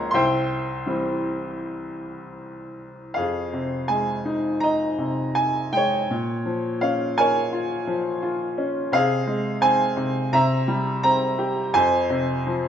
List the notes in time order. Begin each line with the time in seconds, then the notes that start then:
Already playing: C#2 F3 A#3 C#4 A#4 C5 C#5 F5 A#5 C6 C#6
0.11 C2 E5 G5 C6
0.15 C5
0.86 E3 G3 C4
3.14 F2 G#4 F5
3.53 C3
3.88 G#3 G#5
4.25 D#4
4.60 D#5 A#5
4.98 C3
5.35 G#5
5.73 G#3 G5
5.77 C#5
6.11 A#2
6.46 F3
6.81 C#4 F5
7.18 A#4 C#5 G#5
7.53 F4
7.87 F3
8.23 F4
8.58 C#4
8.92 C3 G#4 F5
9.27 G#3
9.61 C4 G#5
9.97 C3
10.33 C3 E5 A#5
10.68 G3
11.03 C4 A#5
11.38 G4
11.74 F2 C5 G#5
12.10 C3
12.47 F3